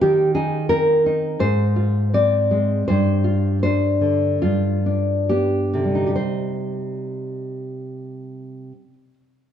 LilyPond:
\new Staff \with { instrumentName = "Nylon-string guitar" } { \time 4/4 \key c \minor \tempo 4 = 72 << { g'8 aes'8 bes'4 c''4 d''4 | c''4 c''4 f'4 g'4 | <c g ees' g' c''>1 | } \\ { ees8 ees'8 c'8 ees'8 aes,8 f'8 c'8 aes8 | g,8 f'8 d'8 d8 g,8 d'8 b8 d8 | r1 | } >> }